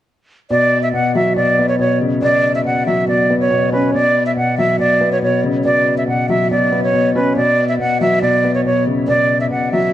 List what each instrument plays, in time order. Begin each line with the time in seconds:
0.51 felt piano B2, flute D5
0.83 flute E5
0.93 felt piano B2, flute F#5
1.15 felt piano F#3, flute E5
1.36 felt piano B2, flute D5
1.58 felt piano B3
1.69 flute C#5
1.79 felt piano B2, flute C#5
2.01 felt piano C#3
2.22 felt piano B2, flute D5
2.55 flute E5
2.65 felt piano B2, flute F#5
2.86 felt piano F#3, flute E5
3.08 felt piano B2, flute D5
3.30 felt piano B3
3.40 flute C#5
3.50 felt piano B2
3.72 felt piano C#4, flute B4
3.94 felt piano B2, flute D5
4.26 flute E5
4.36 felt piano B2, flute F#5
4.58 felt piano F#3, flute E5
4.79 felt piano B2, flute D5
5.01 felt piano B3
5.12 flute C#5
5.22 felt piano B2, flute C#5
5.44 felt piano C#3
5.65 felt piano B2, flute D5
5.98 flute E5
6.08 felt piano B2, flute F#5
6.29 felt piano F#3, flute E5
6.51 felt piano B2, flute D5
6.72 felt piano B3
6.83 flute C#5
6.94 felt piano B2
7.15 felt piano C#4, flute B4
7.36 felt piano B2, flute D5
7.68 flute E5
7.79 felt piano B2, flute F#5
8.01 felt piano F#3, flute E5
8.22 felt piano B2, flute D5
8.44 felt piano B3
8.54 flute C#5
8.65 felt piano B2, flute C#5
8.87 felt piano C#3
9.08 felt piano B2, flute D5
9.41 flute E5
9.51 felt piano B2, flute F#5
9.72 felt piano F#3, flute E5